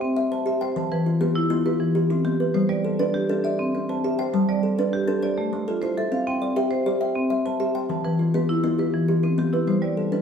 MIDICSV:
0, 0, Header, 1, 3, 480
1, 0, Start_track
1, 0, Tempo, 297471
1, 1220, Time_signature, 12, 3, 24, 8
1, 16488, End_track
2, 0, Start_track
2, 0, Title_t, "Marimba"
2, 0, Program_c, 0, 12
2, 0, Note_on_c, 0, 79, 70
2, 19, Note_on_c, 0, 60, 86
2, 499, Note_off_c, 0, 60, 0
2, 501, Note_off_c, 0, 79, 0
2, 512, Note_on_c, 0, 81, 63
2, 756, Note_on_c, 0, 76, 73
2, 1006, Note_on_c, 0, 72, 69
2, 1228, Note_off_c, 0, 81, 0
2, 1230, Note_off_c, 0, 76, 0
2, 1245, Note_on_c, 0, 81, 71
2, 1480, Note_on_c, 0, 71, 76
2, 1482, Note_on_c, 0, 52, 85
2, 1715, Note_off_c, 0, 81, 0
2, 1717, Note_off_c, 0, 72, 0
2, 1943, Note_off_c, 0, 71, 0
2, 1954, Note_off_c, 0, 52, 0
2, 1962, Note_on_c, 0, 71, 60
2, 2186, Note_on_c, 0, 64, 96
2, 2656, Note_off_c, 0, 71, 0
2, 2668, Note_off_c, 0, 64, 0
2, 2676, Note_on_c, 0, 71, 69
2, 2907, Note_on_c, 0, 52, 82
2, 3390, Note_off_c, 0, 52, 0
2, 3392, Note_on_c, 0, 60, 66
2, 3395, Note_off_c, 0, 71, 0
2, 3626, Note_on_c, 0, 67, 77
2, 4104, Note_on_c, 0, 72, 69
2, 4110, Note_off_c, 0, 67, 0
2, 4114, Note_off_c, 0, 60, 0
2, 4342, Note_on_c, 0, 74, 74
2, 4345, Note_on_c, 0, 55, 79
2, 4590, Note_off_c, 0, 72, 0
2, 4810, Note_off_c, 0, 74, 0
2, 4829, Note_on_c, 0, 74, 71
2, 4831, Note_off_c, 0, 55, 0
2, 5069, Note_on_c, 0, 67, 85
2, 5532, Note_off_c, 0, 74, 0
2, 5552, Note_on_c, 0, 74, 69
2, 5553, Note_off_c, 0, 67, 0
2, 5793, Note_on_c, 0, 60, 82
2, 6035, Note_off_c, 0, 74, 0
2, 6276, Note_off_c, 0, 60, 0
2, 6281, Note_on_c, 0, 81, 67
2, 6525, Note_on_c, 0, 76, 72
2, 6764, Note_on_c, 0, 72, 77
2, 6975, Note_off_c, 0, 81, 0
2, 6994, Note_on_c, 0, 81, 66
2, 7002, Note_off_c, 0, 76, 0
2, 7241, Note_on_c, 0, 74, 82
2, 7244, Note_on_c, 0, 55, 87
2, 7477, Note_off_c, 0, 81, 0
2, 7482, Note_off_c, 0, 72, 0
2, 7707, Note_off_c, 0, 74, 0
2, 7722, Note_off_c, 0, 55, 0
2, 7726, Note_on_c, 0, 74, 66
2, 7957, Note_on_c, 0, 67, 93
2, 8418, Note_off_c, 0, 74, 0
2, 8437, Note_on_c, 0, 74, 69
2, 8438, Note_off_c, 0, 67, 0
2, 8675, Note_on_c, 0, 57, 85
2, 8918, Note_off_c, 0, 74, 0
2, 9156, Note_off_c, 0, 57, 0
2, 9167, Note_on_c, 0, 65, 63
2, 9386, Note_on_c, 0, 72, 81
2, 9641, Note_on_c, 0, 69, 77
2, 9870, Note_on_c, 0, 77, 65
2, 9871, Note_off_c, 0, 72, 0
2, 9882, Note_off_c, 0, 65, 0
2, 10118, Note_on_c, 0, 60, 92
2, 10118, Note_on_c, 0, 79, 80
2, 10352, Note_off_c, 0, 77, 0
2, 10358, Note_off_c, 0, 69, 0
2, 10570, Note_off_c, 0, 79, 0
2, 10589, Note_on_c, 0, 79, 74
2, 10596, Note_off_c, 0, 60, 0
2, 10822, Note_on_c, 0, 72, 94
2, 11287, Note_off_c, 0, 79, 0
2, 11307, Note_off_c, 0, 72, 0
2, 11307, Note_on_c, 0, 79, 65
2, 11546, Note_on_c, 0, 60, 86
2, 12027, Note_off_c, 0, 79, 0
2, 12028, Note_off_c, 0, 60, 0
2, 12030, Note_on_c, 0, 81, 68
2, 12264, Note_on_c, 0, 76, 74
2, 12729, Note_off_c, 0, 81, 0
2, 12745, Note_off_c, 0, 76, 0
2, 12748, Note_on_c, 0, 81, 68
2, 12981, Note_on_c, 0, 52, 83
2, 12983, Note_on_c, 0, 71, 70
2, 13226, Note_off_c, 0, 81, 0
2, 13459, Note_off_c, 0, 71, 0
2, 13462, Note_off_c, 0, 52, 0
2, 13478, Note_on_c, 0, 71, 64
2, 13703, Note_on_c, 0, 64, 89
2, 14170, Note_off_c, 0, 71, 0
2, 14182, Note_off_c, 0, 64, 0
2, 14190, Note_on_c, 0, 71, 65
2, 14419, Note_on_c, 0, 52, 88
2, 14899, Note_off_c, 0, 52, 0
2, 14904, Note_off_c, 0, 71, 0
2, 14904, Note_on_c, 0, 60, 61
2, 15149, Note_on_c, 0, 67, 77
2, 15377, Note_on_c, 0, 64, 63
2, 15615, Note_on_c, 0, 72, 66
2, 15620, Note_off_c, 0, 60, 0
2, 15623, Note_off_c, 0, 67, 0
2, 15844, Note_on_c, 0, 55, 83
2, 15848, Note_on_c, 0, 74, 69
2, 16096, Note_off_c, 0, 64, 0
2, 16096, Note_off_c, 0, 72, 0
2, 16330, Note_off_c, 0, 55, 0
2, 16336, Note_on_c, 0, 71, 60
2, 16488, Note_off_c, 0, 71, 0
2, 16488, Note_off_c, 0, 74, 0
2, 16488, End_track
3, 0, Start_track
3, 0, Title_t, "Kalimba"
3, 0, Program_c, 1, 108
3, 0, Note_on_c, 1, 74, 80
3, 0, Note_on_c, 1, 76, 70
3, 247, Note_off_c, 1, 76, 0
3, 256, Note_off_c, 1, 74, 0
3, 266, Note_on_c, 1, 76, 86
3, 512, Note_on_c, 1, 72, 72
3, 739, Note_on_c, 1, 67, 79
3, 743, Note_off_c, 1, 76, 0
3, 985, Note_on_c, 1, 79, 69
3, 1221, Note_off_c, 1, 67, 0
3, 1228, Note_off_c, 1, 72, 0
3, 1229, Note_on_c, 1, 52, 85
3, 1464, Note_off_c, 1, 79, 0
3, 1707, Note_off_c, 1, 52, 0
3, 1717, Note_on_c, 1, 65, 64
3, 1948, Note_on_c, 1, 59, 84
3, 1950, Note_on_c, 1, 67, 75
3, 2404, Note_off_c, 1, 59, 0
3, 2406, Note_off_c, 1, 65, 0
3, 2423, Note_on_c, 1, 59, 93
3, 2425, Note_on_c, 1, 65, 72
3, 2653, Note_off_c, 1, 67, 0
3, 2672, Note_on_c, 1, 67, 74
3, 2907, Note_off_c, 1, 59, 0
3, 3128, Note_off_c, 1, 67, 0
3, 3148, Note_on_c, 1, 67, 79
3, 3149, Note_off_c, 1, 65, 0
3, 3396, Note_on_c, 1, 64, 75
3, 3626, Note_on_c, 1, 59, 80
3, 3631, Note_off_c, 1, 67, 0
3, 3875, Note_on_c, 1, 71, 73
3, 4109, Note_on_c, 1, 55, 78
3, 4110, Note_off_c, 1, 59, 0
3, 4116, Note_off_c, 1, 64, 0
3, 4355, Note_off_c, 1, 71, 0
3, 4591, Note_on_c, 1, 69, 67
3, 4593, Note_off_c, 1, 55, 0
3, 4833, Note_on_c, 1, 71, 75
3, 4834, Note_on_c, 1, 62, 89
3, 5296, Note_off_c, 1, 69, 0
3, 5299, Note_off_c, 1, 62, 0
3, 5315, Note_on_c, 1, 69, 76
3, 5318, Note_on_c, 1, 62, 89
3, 5556, Note_off_c, 1, 71, 0
3, 5558, Note_off_c, 1, 62, 0
3, 5561, Note_on_c, 1, 76, 71
3, 5797, Note_off_c, 1, 69, 0
3, 6046, Note_on_c, 1, 60, 75
3, 6280, Note_off_c, 1, 76, 0
3, 6284, Note_on_c, 1, 72, 69
3, 6522, Note_off_c, 1, 60, 0
3, 6526, Note_on_c, 1, 67, 82
3, 6757, Note_on_c, 1, 79, 75
3, 6999, Note_on_c, 1, 55, 84
3, 7002, Note_off_c, 1, 72, 0
3, 7003, Note_off_c, 1, 67, 0
3, 7238, Note_off_c, 1, 79, 0
3, 7473, Note_on_c, 1, 69, 66
3, 7479, Note_off_c, 1, 55, 0
3, 7722, Note_on_c, 1, 71, 73
3, 7726, Note_on_c, 1, 62, 92
3, 8171, Note_off_c, 1, 62, 0
3, 8177, Note_off_c, 1, 69, 0
3, 8190, Note_on_c, 1, 62, 91
3, 8197, Note_on_c, 1, 69, 75
3, 8431, Note_on_c, 1, 72, 76
3, 8434, Note_off_c, 1, 62, 0
3, 8440, Note_off_c, 1, 71, 0
3, 8678, Note_off_c, 1, 69, 0
3, 8920, Note_on_c, 1, 57, 80
3, 9154, Note_off_c, 1, 72, 0
3, 9163, Note_on_c, 1, 69, 76
3, 9399, Note_off_c, 1, 57, 0
3, 9401, Note_on_c, 1, 64, 77
3, 9644, Note_on_c, 1, 76, 70
3, 9873, Note_on_c, 1, 60, 82
3, 9878, Note_off_c, 1, 64, 0
3, 9880, Note_off_c, 1, 69, 0
3, 10120, Note_off_c, 1, 76, 0
3, 10354, Note_off_c, 1, 60, 0
3, 10354, Note_on_c, 1, 74, 73
3, 10592, Note_on_c, 1, 67, 90
3, 10598, Note_on_c, 1, 76, 72
3, 11053, Note_off_c, 1, 74, 0
3, 11054, Note_off_c, 1, 67, 0
3, 11072, Note_on_c, 1, 74, 70
3, 11073, Note_on_c, 1, 67, 85
3, 11290, Note_off_c, 1, 76, 0
3, 11309, Note_on_c, 1, 76, 78
3, 11552, Note_off_c, 1, 67, 0
3, 11764, Note_off_c, 1, 76, 0
3, 11783, Note_on_c, 1, 76, 81
3, 11791, Note_off_c, 1, 74, 0
3, 12034, Note_on_c, 1, 72, 76
3, 12261, Note_on_c, 1, 67, 79
3, 12266, Note_off_c, 1, 76, 0
3, 12505, Note_on_c, 1, 79, 71
3, 12739, Note_on_c, 1, 52, 86
3, 12743, Note_off_c, 1, 67, 0
3, 12750, Note_off_c, 1, 72, 0
3, 12985, Note_off_c, 1, 79, 0
3, 13219, Note_on_c, 1, 65, 66
3, 13222, Note_off_c, 1, 52, 0
3, 13460, Note_on_c, 1, 67, 71
3, 13463, Note_on_c, 1, 59, 82
3, 13917, Note_off_c, 1, 59, 0
3, 13919, Note_off_c, 1, 65, 0
3, 13936, Note_on_c, 1, 59, 84
3, 13938, Note_on_c, 1, 65, 66
3, 14158, Note_off_c, 1, 67, 0
3, 14177, Note_on_c, 1, 67, 68
3, 14418, Note_off_c, 1, 59, 0
3, 14638, Note_off_c, 1, 67, 0
3, 14658, Note_on_c, 1, 67, 79
3, 14659, Note_off_c, 1, 65, 0
3, 14898, Note_on_c, 1, 64, 74
3, 15134, Note_on_c, 1, 59, 79
3, 15138, Note_off_c, 1, 67, 0
3, 15384, Note_on_c, 1, 71, 69
3, 15609, Note_on_c, 1, 55, 75
3, 15616, Note_off_c, 1, 59, 0
3, 15617, Note_off_c, 1, 64, 0
3, 15860, Note_off_c, 1, 71, 0
3, 16093, Note_off_c, 1, 55, 0
3, 16093, Note_on_c, 1, 69, 63
3, 16330, Note_on_c, 1, 71, 64
3, 16331, Note_on_c, 1, 62, 82
3, 16488, Note_off_c, 1, 62, 0
3, 16488, Note_off_c, 1, 69, 0
3, 16488, Note_off_c, 1, 71, 0
3, 16488, End_track
0, 0, End_of_file